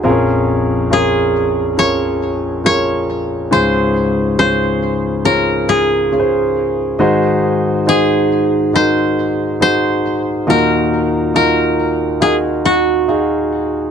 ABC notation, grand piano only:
X:1
M:4/4
L:1/8
Q:1/4=69
K:Bbm
V:1 name="Grand piano"
[CDFAB]2 [DFAB]2 [DFAB]2 [DFAB]2 | [DFAc]2 [DFAc]2 [DFAd]2 [DFABc]2 | [EGAc]2 [EGAc]2 [EGAB]2 [EGAc]2 | [EFGB]2 [EFGB]2 [EGBf]2 [EGAf]2 |]
V:2 name="Grand piano" clef=bass
[B,,,F,,]8 | [D,,A,,]8 | [A,,E,]8 | [E,,B,,]8 |]